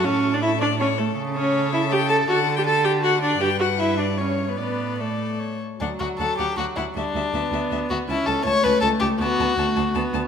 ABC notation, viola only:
X:1
M:3/4
L:1/16
Q:1/4=160
K:A
V:1 name="Viola"
C3 D E2 D2 C2 A,2 | [K:D] z2 C4 E2 G2 A2 | F3 G A2 G2 F2 D2 | G2 F2 E2 D2 C3 B, |
B,4 A,6 z2 | F,12 | G,4 B,8 | C4 A,8 |
B,4 A,4 B,4 |]